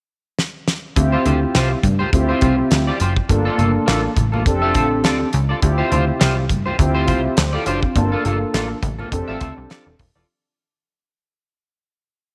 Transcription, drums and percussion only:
0.39 snare
0.68 snare
0.96 kick, closed hi-hat, muted conga, low conga
1.26 closed hi-hat, muted conga, high conga
1.55 snare, clap, closed hi-hat
1.83 kick, closed hi-hat, muted conga, high conga
2.00 low conga
2.13 kick, closed hi-hat, low conga
2.41 kick, closed hi-hat, muted conga, high conga
2.71 snare, clap, closed hi-hat
3.00 closed hi-hat
3.16 kick
3.29 kick, closed hi-hat, muted conga, low conga
3.59 closed hi-hat, muted conga, high conga
3.88 snare, clap, closed hi-hat, muted conga
4.17 kick, closed hi-hat, muted conga, high conga
4.34 low conga
4.46 kick, closed hi-hat, muted conga, low conga
4.75 kick, closed hi-hat, high conga
5.04 snare, clap, closed hi-hat
5.33 closed hi-hat
5.62 kick, closed hi-hat, muted conga, low conga
5.92 closed hi-hat, high conga
6.21 snare, clap, closed hi-hat, muted conga
6.50 kick, closed hi-hat, high conga
6.66 low conga
6.79 kick, closed hi-hat, muted conga, low conga
7.08 kick, closed hi-hat, muted conga, high conga
7.37 snare, clap, closed hi-hat
7.66 closed hi-hat
7.83 kick
7.96 kick, closed hi-hat, muted conga, low conga
8.25 closed hi-hat, high conga
8.54 snare, clap, closed hi-hat
8.83 kick, closed hi-hat, muted conga, high conga
8.99 low conga
9.12 kick, closed hi-hat, low conga
9.41 kick, closed hi-hat, muted conga, high conga
9.70 snare, clap, closed hi-hat
9.99 kick, open hi-hat, muted conga

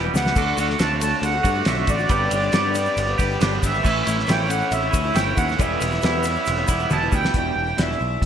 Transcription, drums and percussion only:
0.15 snare, shaker
0.25 snare, shaker
0.36 kick, crash, shaker
0.57 ride, shaker
0.70 snare
0.79 snare, ride, shaker
1.01 ride, shaker
1.23 ride, shaker
1.44 kick, ride, shaker
1.65 snare, ride, shaker
1.87 kick, ride, shaker
1.99 shaker
2.09 kick, ride, shaker
2.31 ride, shaker
2.53 snare, ride, shaker
2.75 ride, shaker
2.85 shaker
2.97 ride, shaker
3.19 kick, ride, shaker
3.41 snare, ride, shaker
3.63 kick, snare, ride, shaker
3.74 shaker
3.85 kick, crash, shaker
4.07 ride, shaker
4.19 snare
4.29 snare, ride, shaker
4.50 ride, shaker
4.61 shaker
4.72 ride, shaker
4.94 kick, ride, shaker
5.16 snare, ride, shaker
5.37 kick, ride, shaker
5.49 snare, shaker
5.59 kick, ride, shaker
5.81 ride, shaker
5.92 snare, shaker
6.02 snare, ride, shaker
6.23 ride, shaker
6.35 shaker
6.46 ride, shaker
6.68 kick, ride, shaker
6.80 shaker
6.90 high tom, shaker
7.12 kick, shaker
7.23 snare, shaker
7.34 kick, closed hi-hat
7.78 snare, closed hi-hat
7.91 snare
8.22 kick, closed hi-hat

